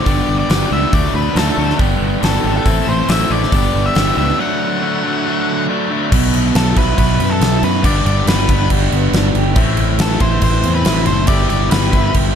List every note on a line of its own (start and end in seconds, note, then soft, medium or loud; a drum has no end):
0.00 0.38 D5 loud
0.06 0.20 G1 medium
0.06 0.48 G2 medium
0.06 0.48 D3 loud
0.06 0.49 G3 medium
0.06 0.92 B3 medium
0.06 0.49 B3 loud
0.06 0.91 D4 medium
0.06 0.49 D4 loud
0.06 0.92 G4 medium
0.06 0.50 G4 loud
0.06 0.91 D5 medium
0.06 kick medium
0.06 open hi-hat medium
0.29 0.42 G1 medium
0.39 0.69 D5 loud
0.49 0.64 G1 medium
0.49 0.70 G2 medium
0.49 0.70 D3 medium
0.49 0.70 G3 medium
0.49 0.71 B3 medium
0.49 0.71 D4 medium
0.49 0.72 G4 medium
0.49 snare loud
0.49 open hi-hat medium
0.71 0.85 C#2 medium
0.71 0.92 G2 medium
0.71 0.92 D3 medium
0.71 0.92 G3 medium
0.71 0.92 B3 medium
0.71 0.92 D4 medium
0.71 0.93 G4 loud
0.71 0.92 E5 medium
0.92 1.07 D2 medium
0.92 1.34 D3 medium
0.92 1.35 F#3 medium
0.92 1.78 A3 medium
0.92 1.35 A3 loud
0.92 1.78 D4 medium
0.92 1.36 D4 loud
0.92 1.79 F#4 medium
0.92 1.36 F#4 loud
0.92 1.79 D5 medium
0.92 1.14 D5 medium
0.92 kick loud
0.92 open hi-hat medium
1.14 1.28 D2 medium
1.14 1.37 B4 medium
1.35 1.49 D2 medium
1.35 1.56 D3 medium
1.35 1.57 F#3 medium
1.35 1.57 A3 medium
1.35 1.58 D4 medium
1.35 1.58 F#4 medium
1.35 1.77 A4 medium
1.35 snare loud
1.35 open hi-hat medium
1.57 1.71 D2 medium
1.57 1.78 D3 medium
1.57 1.79 F#3 medium
1.57 1.79 A3 medium
1.57 1.79 D4 medium
1.57 1.79 F#4 medium
1.70 snare soft
1.79 1.93 G1 medium
1.79 2.21 G2 medium
1.79 2.22 D3 loud
1.79 2.22 G3 loud
1.79 2.22 B3 medium
1.79 2.66 B3 medium
1.79 2.65 D4 medium
1.79 2.23 D4 loud
1.79 2.66 G4 medium
1.79 2.23 G4 loud
1.79 2.66 D5 medium
1.79 kick loud
1.79 open hi-hat soft
2.00 2.15 G1 medium
2.22 2.37 G1 medium
2.22 2.42 G2 medium
2.22 2.43 D3 medium
2.22 2.43 G3 medium
2.22 2.43 B3 medium
2.22 2.44 D4 loud
2.22 2.44 G4 medium
2.22 2.54 A4 medium
2.22 snare loud
2.22 open hi-hat medium
2.44 2.58 G#1 medium
2.44 2.64 G2 medium
2.44 2.64 D3 medium
2.44 2.65 G3 medium
2.44 2.65 B3 medium
2.44 2.65 D4 medium
2.44 2.65 G4 medium
2.57 2.89 A4 medium
2.65 2.80 A1 medium
2.65 3.07 A2 medium
2.65 3.07 E3 medium
2.65 3.08 A3 medium
2.65 3.08 C4 loud
2.65 3.52 C4 medium
2.65 3.08 E4 medium
2.65 3.52 E4 medium
2.65 3.52 A4 medium
2.65 3.09 A4 loud
2.65 3.52 E5 medium
2.65 kick loud
2.65 open hi-hat medium
2.87 3.01 A1 medium
2.87 3.10 C5 medium
3.08 3.23 A1 loud
3.08 3.29 A2 medium
3.08 3.30 E3 medium
3.08 3.29 A3 medium
3.08 3.30 C4 medium
3.08 3.31 E4 medium
3.08 3.31 A4 medium
3.08 3.32 E5 medium
3.08 snare loud
3.08 open hi-hat medium
3.30 3.44 A1 loud
3.30 3.51 A2 medium
3.30 3.51 E3 medium
3.30 3.51 A3 medium
3.30 3.52 C4 medium
3.30 3.52 E4 medium
3.30 3.52 A4 loud
3.30 3.87 D5 medium
3.43 snare soft
3.51 3.66 G1 medium
3.51 3.94 G2 medium
3.51 3.95 D3 medium
3.51 3.95 G3 loud
3.51 4.38 B3 medium
3.51 3.95 B3 medium
3.51 4.38 D4 medium
3.51 3.96 D4 loud
3.51 4.38 G4 medium
3.51 3.96 G4 loud
3.51 4.37 D5 medium
3.51 kick loud
3.51 open hi-hat medium
3.74 3.88 G1 medium
3.86 4.17 E5 medium
3.95 4.10 G1 medium
3.95 4.15 G2 medium
3.95 4.16 D3 medium
3.95 4.17 G3 medium
3.95 4.17 B3 medium
3.95 4.17 D4 medium
3.95 4.17 G4 medium
3.95 snare loud
3.95 open hi-hat medium
4.17 4.31 C#2 medium
4.17 4.37 G2 medium
4.17 4.38 D3 medium
4.17 4.38 G3 medium
4.17 4.38 B3 loud
4.17 4.38 D4 medium
4.17 4.38 G4 medium
4.17 4.40 E5 loud
4.38 4.81 D3 medium
4.38 4.82 F#3 loud
4.38 6.10 A3 medium
4.38 4.82 A3 loud
4.38 6.10 D4 medium
4.38 4.83 D4 loud
4.38 6.10 F#4 medium
4.38 4.83 F#4 loud
4.38 6.09 D5 medium
4.38 5.65 F#5 loud
4.82 5.03 D3 medium
4.82 5.03 F#3 medium
4.82 5.04 A3 medium
4.82 5.04 D4 medium
4.82 5.05 F#4 medium
5.04 5.25 D3 medium
5.04 5.25 F#3 medium
5.04 5.26 A3 medium
5.04 5.27 D4 loud
5.04 5.27 F#4 loud
5.26 5.68 D3 loud
5.26 5.68 F#3 loud
5.26 5.69 A3 loud
5.26 5.69 D4 loud
5.26 5.69 F#4 loud
5.69 5.89 D3 medium
5.69 5.90 F#3 medium
5.69 5.90 A3 medium
5.69 5.91 D4 loud
5.69 5.91 F#4 loud
5.90 6.11 D3 medium
5.90 6.11 F#3 medium
5.90 6.11 A3 medium
5.90 6.11 D4 loud
5.90 6.12 F#4 medium
6.12 6.53 B1 medium
6.12 7.20 B2 medium
6.12 7.83 F#3 medium
6.12 7.83 B3 medium
6.12 7.84 E4 medium
6.12 kick loud
6.12 crash loud
6.12 crash medium
6.34 crash medium
6.55 6.75 B1 loud
6.55 6.97 F#3 medium
6.55 6.78 A4 medium
6.55 snare loud
6.55 crash medium
6.76 6.97 B1 medium
6.76 7.40 E4 medium
6.76 6.98 B4 medium
6.76 kick loud
6.76 crash medium
6.98 7.18 B1 loud
6.98 7.84 F#3 medium
6.98 7.32 B4 medium
6.98 kick medium
6.98 crash medium
7.20 7.40 F#2 medium
7.20 7.85 B3 medium
7.20 crash medium
7.30 7.63 A4 medium
7.41 7.61 B1 loud
7.41 7.84 E4 medium
7.41 snare loud
7.41 crash medium
7.63 7.83 F#2 medium
7.63 7.84 F#4 medium
7.63 7.85 B4 medium
7.63 crash medium
7.84 8.05 G1 loud
7.84 8.92 G2 medium
7.84 9.55 D3 medium
7.84 9.55 G3 medium
7.84 9.55 B3 loud
7.84 9.56 D4 loud
7.84 8.05 D5 loud
7.84 kick loud
7.84 crash medium
8.05 8.25 G1 loud
8.05 8.28 D5 loud
8.05 crash medium
8.26 8.67 G1 medium
8.26 8.70 G3 medium
8.26 8.68 B4 medium
8.26 snare loud
8.26 crash medium
8.49 9.13 D4 medium
8.49 kick medium
8.49 crash medium
8.70 8.91 G1 loud
8.70 9.57 G3 medium
8.70 kick medium
8.70 crash medium
8.92 9.12 G1 loud
8.92 9.57 B3 medium
8.92 crash medium
9.12 9.33 G1 loud
9.12 9.57 D4 medium
9.12 snare loud
9.12 crash medium
9.35 9.56 G1 medium
9.35 9.57 G4 medium
9.35 crash medium
9.56 9.97 A1 loud
9.56 10.65 A2 medium
9.56 11.27 E3 medium
9.56 11.27 A3 medium
9.56 11.28 C4 loud
9.56 11.29 E4 loud
9.56 kick loud
9.56 crash medium
9.77 crash medium
9.99 10.19 A1 loud
9.99 10.43 E3 medium
9.99 10.21 A4 medium
9.99 snare loud
9.99 crash medium
10.20 10.41 A1 loud
10.20 10.86 E4 medium
10.20 10.43 C5 medium
10.20 kick loud
10.20 crash medium
10.42 10.63 A1 loud
10.42 11.30 E3 medium
10.42 10.74 C5 loud
10.42 kick medium
10.42 crash medium
10.63 10.85 E2 loud
10.63 11.29 C4 medium
10.63 crash medium
10.75 11.07 B4 medium
10.85 11.06 A1 medium
10.85 11.95 E4 medium
10.85 snare loud
10.85 crash medium
11.06 11.28 F#1 medium
11.06 11.29 A4 medium
11.06 11.27 C5 loud
11.06 crash medium
11.27 11.49 G1 medium
11.27 11.72 G3 medium
11.27 12.35 B3 medium
11.27 12.35 E4 medium
11.27 12.35 G4 medium
11.27 11.48 D5 loud
11.27 kick loud
11.27 crash medium
11.50 11.71 G1 medium
11.50 11.70 D5 loud
11.50 crash medium
11.71 12.13 G1 loud
11.71 12.15 G3 medium
11.71 12.12 B4 medium
11.71 snare loud
11.71 crash medium
11.93 12.35 E4 medium
11.93 kick medium
11.93 crash medium
12.14 12.35 G1 loud
12.14 12.35 G3 medium
12.14 kick medium
12.14 crash medium